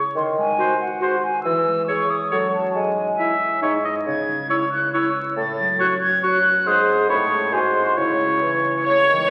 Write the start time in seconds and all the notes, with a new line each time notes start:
Already playing: C#3 G#3 E4 G#4 C#5 C#6
0.16 D#3 C6
0.38 G#3 G#5
0.59 F#4 C5
0.80 C5 F#5
1.01 F#4 G#4 C5
1.23 C5 G#5
1.43 E3 E6
1.67 G#3
1.87 G#4 C#5 C#6
2.10 C#5 D#6
2.31 F#2 F#3 A4 C#5 C#6
2.53 F#4 C#5 A5
2.74 G#2 G#3 G#5
2.97 G#3
3.19 E4 E5
3.41 C#5
3.62 G#2 G#3 D#4 C#5
3.85 D#4 C5 D#5
4.06 C#3 G#6
4.28 G#3
4.50 E4 C#5 E6
4.71 C#5 F#6
4.93 E4 G#4 C#5 E6
5.16 C#5
5.37 A2 A6
5.59 F#3
5.80 C#4 F#4 C#5 F#6
6.02 C#5 G#6
6.22 F#4 C#5 F#6
6.44 C#5
6.66 G#2 G#4 C5 D#6
6.88 C4 G#4
7.09 A2 G#4 C#5 B5
7.30 C#4 E4 C#6
7.52 G#2 F#4 C5 G#5
7.75 C4 F#4 C6
7.97 C#3 E4 C#5 C#6
8.42 E3
8.64 G#4
8.85 C#3 C#5 C#6
9.08 D#3 G#4
9.12 E3
9.17 G#3
9.21 B3
9.26 E4